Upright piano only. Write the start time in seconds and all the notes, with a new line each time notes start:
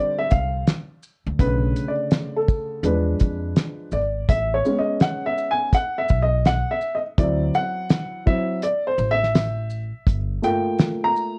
Already playing: D3 G3 C4 D5
0.19 E5
0.31 F5
1.39 C#3 D3 A3 B4
1.88 D5
2.36 A4
2.84 F3 G#3 D4 B4
3.93 D5
4.29 E5
4.54 C#5
4.65 G#3 B3 C#4
4.78 D#5
5.02 F#5
5.26 E5
5.51 G#5
5.75 F#5
5.98 E5
6.23 D#5
6.47 F#5
6.71 E5
6.95 D#5
7.18 F#3 C4 E4 D5
7.55 F#5
8.26 F#3 C4 E4 E5
8.63 D5
8.87 C5
9.11 E5
10.42 A3 A#3 F4 G5
11.04 A#5